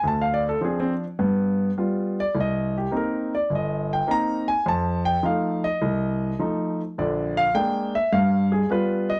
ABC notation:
X:1
M:4/4
L:1/16
Q:"Swing" 1/4=104
K:Fdor
V:1 name="Grand piano"
=a f d =A _A C z8 d2 | e2 G2 B2 d2 e2 g2 b2 a2 | =a2 g2 f2 e6 z4 | d2 f2 g2 =e2 f2 A2 =B2 _e2 |]
V:2 name="Grand piano"
D,,4 [F,CD]2 z2 [G,,=B,]4 [G,B,F]2 z2 | C,,4 [B,CE]2 z2 G,,,4 [B,CE]2 z2 | F,,4 [F,=A,E]2 z2 C,,4 [F,A,E]2 z2 | [B,,,D,]4 [A,B,D]2 z2 G,,4 [G,=B,F]2 z2 |]